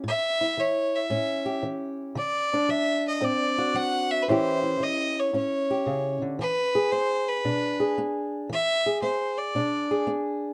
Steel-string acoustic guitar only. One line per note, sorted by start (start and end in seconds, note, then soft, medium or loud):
0.04 0.54 A2 medium
0.41 2.14 E4 medium
0.57 1.07 E3 medium
1.10 1.60 A2 medium
1.10 2.14 C#4 medium
1.46 2.14 G4 medium
1.63 2.12 E3 medium
2.15 2.65 D3 medium
2.54 4.26 D4 medium
2.69 3.18 F#3 medium
3.21 3.71 A2 medium
3.21 4.25 C4 medium
3.58 4.28 F#4 medium
3.74 4.24 F#3 medium
4.28 4.77 A2 medium
4.28 4.80 E3 medium
4.28 5.33 C#4 medium
4.28 4.63 E4 medium
4.28 5.69 G4 medium
4.63 7.45 E4 medium
4.80 5.29 E3 medium
5.33 5.82 A2 medium
5.33 6.37 C#4 medium
5.71 6.37 G4 medium
5.86 6.21 C#3 medium
6.22 6.39 D3 medium
6.39 6.88 E3 medium
6.75 7.79 G#4 medium
6.92 7.41 B3 medium
7.45 7.94 B2 medium
7.45 8.48 D4 medium
7.80 8.48 G#4 medium
7.98 8.47 B3 medium
8.49 8.99 E3 medium
8.86 9.90 G#4 medium
9.02 9.51 B3 medium
9.55 10.04 B2 medium
9.55 10.54 D4 medium
9.91 10.54 G#4 medium
10.07 10.54 B3 medium